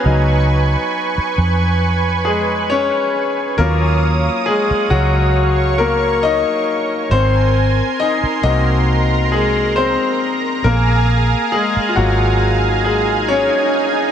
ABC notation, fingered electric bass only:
X:1
M:4/4
L:1/16
Q:"Swing 16ths" 1/4=68
K:Ebm
V:1 name="Fingered electric bass" clef=bass
D,,4 z2 F,,6- F,, z3 | E,,4 z2 D,,6- D,, z3 | A,,,4 z2 =C,,6- C,, z3 | B,,,4 z2 A,,,6- A,,, z3 |]